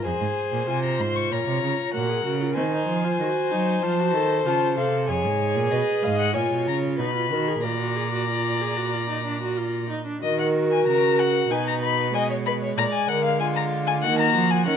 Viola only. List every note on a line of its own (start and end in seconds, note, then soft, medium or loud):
0.05 0.69 G#4 medium
0.67 1.95 F4 medium
1.94 2.11 F#4 medium
2.09 2.24 G#4 medium
2.25 2.31 F#4 medium
2.41 2.47 F4 medium
2.56 2.63 C4 medium
2.72 3.06 D#4 medium
3.04 3.21 F4 medium
3.20 3.53 F#4 medium
3.51 3.84 D#4 medium
3.83 4.01 F4 medium
3.99 4.16 F#4 medium
4.15 4.48 A4 medium
4.46 4.77 F4 medium
4.78 5.10 A4 medium
5.09 6.35 G#4 medium
6.35 7.01 F4 medium
6.99 7.15 D#4 medium
7.15 7.31 F4 medium
7.31 7.49 F#4 medium
7.48 7.65 G#4 medium
7.64 7.79 F4 medium
7.79 7.98 F#4 medium
7.96 8.12 G#4 medium
8.12 8.28 F#4 medium
8.29 8.63 F4 medium
8.61 8.78 G#4 medium
8.77 8.95 F#4 medium
8.93 9.09 F4 medium
9.10 9.25 D#4 medium
9.25 9.41 D4 medium
9.42 9.59 F#4 medium
9.57 9.89 F4 medium
9.90 10.05 D#4 medium
10.06 10.22 D4 medium
10.22 11.52 F#4 medium
11.50 12.13 D#4 medium
12.14 14.00 G#3 medium
14.03 14.66 A#3 medium
14.66 14.77 C#4 medium